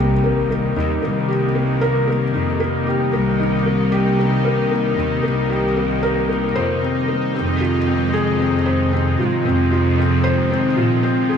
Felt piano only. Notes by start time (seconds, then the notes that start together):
Already playing: A#3 D#4 G4
0.24 A#4
0.50 A#3
0.76 D#4
1.02 A#3
1.28 G4
1.55 A#3
1.81 A#4
2.08 A#3
2.34 D#4
2.60 A#3
2.87 G4
3.13 A#3
3.39 D#4
3.66 A#3
3.92 G4
4.18 A#3
4.45 A#4
4.71 A#3
4.97 D#4
5.23 A#3
5.50 G4
5.76 A#3
6.03 A#4
6.29 A#3
6.55 C5
6.82 C4
7.08 A#3
7.34 C4
7.61 F4
7.87 C4
8.14 G#4
8.40 C4
8.66 C5
8.93 C4
9.19 F4
9.45 C4
9.71 F4
9.98 C4
10.24 C5
10.50 C4
10.76 F4
11.03 C4
11.29 G#4